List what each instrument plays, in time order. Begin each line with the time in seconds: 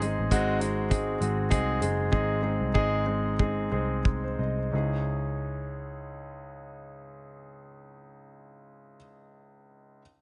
Already playing: picked electric bass G#1, grand piano G#2 G#3 C4 D#4 G#4
0.02 grand piano G#3 C4 D#4 G#4, closed hi-hat
0.19 picked electric bass A1
0.31 picked electric bass G#1, grand piano G#3 C4 D#4 F#4, kick, closed hi-hat
0.60 grand piano G#3 C4 D#4 F#4, closed hi-hat
0.90 grand piano G#3 C4 D#4 G#4, kick, closed hi-hat
1.20 picked electric bass G#1, grand piano G#3 C4 D#4 F#4, closed hi-hat
1.50 picked electric bass C2, grand piano G#3 C4 D#4 G#4, kick, closed hi-hat
1.81 picked electric bass F#1, grand piano G#3 C4 D#4 G#4, closed hi-hat
2.12 picked electric bass G#1, grand piano G#2 G#3 C4 D#4 G#4, kick
2.42 grand piano G#3 C4 D#4 G#4
2.61 picked electric bass C2
2.74 picked electric bass G#1, grand piano G#3 C4 D#4 G#4, kick
3.06 grand piano G#3 C4 D#4 G#4
3.39 grand piano G#3 C4 D#4 G#4, kick
3.72 picked electric bass C2, grand piano G#3 C4 D#4 G#4
4.05 grand piano G#4, kick
4.24 grand piano C5
4.39 picked electric bass C2, grand piano D#5
4.58 grand piano C5
4.71 grand piano C#2 C#4 D#4 E4 G#4, picked electric bass C#2